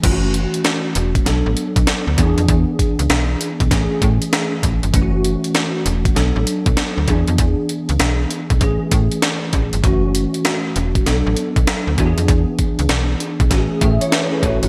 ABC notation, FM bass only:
X:1
M:4/4
L:1/16
Q:"Swing 16ths" 1/4=98
K:F#m
V:1 name="FM bass" clef=bass
F,,,3 z3 E,,,2 B,,, A,,, z B,,, z D,, E,, ^E,, | E,, z2 C,, B,,,2 z B,,, A,,, z A,, z3 A,,, =G,,, | F,,,3 z3 E,,,2 B,,, A,,, z B,,, z D,, E,, ^E,, | E,, z2 C,, B,,,2 z B,,, A,,, z A,, z3 A,,, =G,,, |
F,,,3 z3 E,,,2 B,,, A,,, z B,,, z D,, E,, ^E,, | E,, z2 C,, B,,,2 z B,,, A,,, z A,, z3 A,,, =G,,, |]